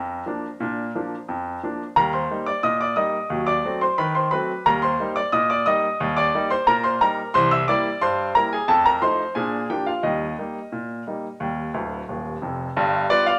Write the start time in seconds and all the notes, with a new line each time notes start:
Already playing: F2 A#4 A#5
0.26 F3 A#3 D4
0.60 A#2 D4
0.95 F3 A#3 D4
1.28 F2
1.63 F3 A#3 D4
1.96 D#2 G3 A#4 A#5
2.13 C5 C6
2.31 G3 A#3 D#4
2.46 D5 D6
2.63 A#2 D#5 D#6
2.81 D5 D6
2.96 G3 A#3 D#4 D#5 D#6
3.30 D#2 F#3
3.47 D5 D6
3.65 F#3 A3 C4
3.81 C5 C6
3.98 D#3 B4 B5
4.15 C5 C6
4.31 F#3 A3 C4 B4 B5
4.66 D#2 G3 A#4 A#5
4.82 C5 C6
4.99 G3 A#3 D#4
5.16 D5 D6
5.32 A#2 D#5 D#6
5.50 D5 D6
5.66 G3 A#3 D#4 D#5 D#6
6.00 D#2 G3
6.17 D5 D6
6.34 G3 A#3 D#4
6.50 C5 C6
6.67 A#2 A#4 A#5
6.84 C5 C6
7.01 G3 A#3 D#4 A#4 A#5
7.34 C2 E3 C5 C6
7.51 E5 E6
7.68 G3 A#3 E4 D5 D6
8.01 G2 C5 C6
8.35 G3 A#3 E4 A#4 A#5
8.53 G#4 G#5
8.68 F2 A3 A4 A5
8.86 A#4 A#5
9.02 F3 A3 D#4 C5 C6
9.35 A#2 D4 G#4 G#5
9.70 F3 A#3 D4 G4 G5
9.86 F4 F5
10.03 D#2 G3 D#4 D#5
10.39 G3 A#3 D#4
10.72 A#2
11.07 G3 A#3 D#4
11.40 D#2 G3
11.74 D1 D2
12.09 D#1 D#2
12.42 F1 F2
12.77 G1 G2
13.10 G3 B3 F4 B4 D5
13.26 D5 F5